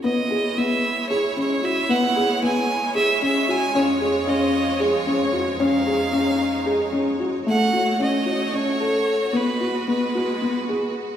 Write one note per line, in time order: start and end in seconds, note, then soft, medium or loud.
0.03 7.43 G#3 medium
0.03 0.18 B3 medium
0.03 3.71 E4 medium
0.03 7.43 C#5 medium
0.03 0.59 D#5 medium
0.31 0.44 G#4 medium
0.58 0.85 B3 medium
0.58 1.09 E5 medium
1.09 1.24 G#4 medium
1.09 1.34 C#5 medium
1.37 1.50 C#4 medium
1.37 1.66 C#5 medium
1.63 1.77 F#4 medium
1.63 1.91 E5 medium
1.89 2.03 B3 medium
1.89 2.42 F#5 medium
2.16 2.30 G#4 medium
2.43 2.70 B3 medium
2.43 2.92 G#5 medium
2.95 3.09 G#4 medium
2.95 3.20 E5 medium
3.22 3.36 C#4 medium
3.22 3.52 E5 medium
3.49 3.62 F#4 medium
3.49 3.77 G#5 medium
3.75 7.43 F2 medium
3.75 3.89 C#4 medium
3.75 5.59 F4 medium
3.75 4.30 C#5 medium
4.01 4.15 G#4 medium
4.27 4.55 C#4 medium
4.27 4.82 D#5 medium
4.80 4.94 G#4 medium
4.80 5.62 C#5 medium
5.07 5.21 C#4 medium
5.33 5.47 F#4 medium
5.59 5.74 C#4 medium
5.59 7.45 D#4 medium
5.59 6.94 F5 medium
5.87 6.01 G#4 medium
6.13 6.41 C#4 medium
6.66 6.80 G#4 medium
6.92 7.07 C#4 medium
7.20 7.34 F#4 medium
7.46 9.32 A3 medium
7.46 7.61 A3 medium
7.46 11.17 F#4 medium
7.46 9.32 C#5 medium
7.46 7.98 F#5 medium
7.73 7.87 F#4 medium
8.00 8.14 C#4 medium
8.00 8.56 D#5 medium
8.26 8.40 F#4 medium
8.53 8.67 C#4 medium
8.53 9.38 C#5 medium
8.80 9.08 A4 medium
9.33 11.17 G#3 medium
9.33 9.47 B3 medium
9.33 11.17 B4 medium
9.33 9.88 B4 medium
9.61 9.75 F#4 medium
9.88 10.02 B3 medium
9.88 10.92 B4 medium
10.15 10.29 F#4 medium
10.42 10.56 B3 medium
10.69 10.97 G#4 medium